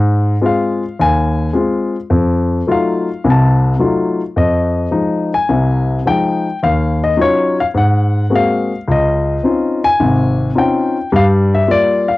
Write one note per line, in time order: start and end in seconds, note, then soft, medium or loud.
0.00 0.35 G#2 medium
0.42 0.82 G#3 medium
0.42 0.82 C4 soft
0.42 0.83 F4 medium
0.46 0.96 F5 medium
0.99 1.48 D#2 medium
0.99 1.52 G#5 medium
1.53 1.94 G#3 medium
1.53 1.95 C4 soft
1.53 1.95 F4 medium
2.10 2.59 F2 medium
2.67 3.07 F#3 soft
2.67 3.08 A3 medium
2.67 3.08 D#4 soft
2.67 3.08 F4 medium
2.71 3.22 F5 medium
3.24 3.73 C2 medium
3.24 3.73 C3 medium
3.24 3.29 G#5 medium
3.30 3.79 A5 medium
3.79 4.20 F#3 medium
3.79 4.20 A3 soft
3.79 4.20 D#4 soft
3.79 4.20 F4 medium
4.36 4.85 F2 medium
4.36 5.28 D#5 medium
4.91 5.32 F3 soft
4.91 5.32 G#3 soft
4.91 5.32 D#4 medium
5.34 6.09 G#5 medium
5.49 5.98 C2 medium
5.49 5.98 C3 medium
6.06 6.46 F3 medium
6.06 6.46 G#3 soft
6.06 6.46 D#4 medium
6.06 6.59 G5 medium
6.63 7.11 D#2 medium
6.63 6.98 F5 medium
7.04 7.18 D#5 medium
7.17 7.58 F#3 soft
7.17 7.58 C#4 medium
7.17 7.58 D#4 soft
7.17 7.58 F4 medium
7.21 7.56 C#5 medium
7.60 7.65 F5 medium
7.74 8.23 G#2 medium
7.74 8.34 F#5 medium
8.30 8.71 G#3 medium
8.30 8.71 A#3 soft
8.30 8.71 C4 soft
8.30 8.71 F#4 medium
8.35 8.77 F5 medium
8.88 9.36 C#2 medium
8.88 9.80 D#5 medium
9.43 9.84 C4 soft
9.43 9.84 C#4 soft
9.43 9.84 D#4 soft
9.43 9.84 F4 medium
9.84 10.59 G#5 loud
10.00 10.49 G#1 medium
10.00 10.49 C3 medium
10.55 10.96 C4 medium
10.55 10.96 C#4 soft
10.55 10.96 D#4 medium
10.55 10.96 F4 medium
10.55 11.10 G5 medium
11.12 11.61 G2 medium
11.12 11.61 G3 medium
11.12 11.24 F5 medium
11.55 11.69 E5 medium
11.68 12.09 G3 soft
11.68 12.09 A#3 soft
11.68 12.09 F4 medium
11.68 12.10 D5 loud
12.08 12.18 F5 medium